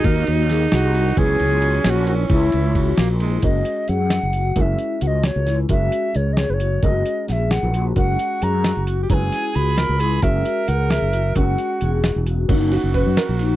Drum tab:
CC |-----|-----|-----|-----|
RD |xxxxx|xxxxx|xxxxx|-----|
HH |-----|-----|-----|xxxxx|
SD |--oo-|---o-|---o-|---o-|
BD |o----|o----|o-o--|o----|

CC |-----|-----|-----|-----|
RD |-----|-----|-----|-----|
HH |xxxxx|xxxxx|xxxxx|xxxxx|
SD |---oo|---o-|--oo-|---o-|
BD |o----|o----|o----|o----|

CC |-----|-----|-----|x----|
RD |-----|-----|-----|xxxxx|
HH |xxxxx|xxxxx|xxxxx|-----|
SD |-o-o-|---o-|---o-|-o-oo|
BD |o----|o----|o----|o-o--|